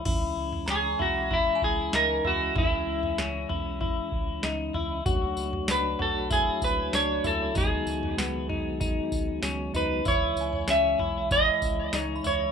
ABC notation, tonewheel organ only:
X:1
M:4/4
L:1/8
Q:1/4=96
K:C#m
V:1 name="Tonewheel organ"
C8- | C8 | [F,F]8- | [F,F]8 |
c8 |]
V:2 name="Tonewheel organ" clef=bass
[E,G,]8- | [E,G,]8 | [A,=Dc]8 | [D,G,B,]8 |
E,8 |]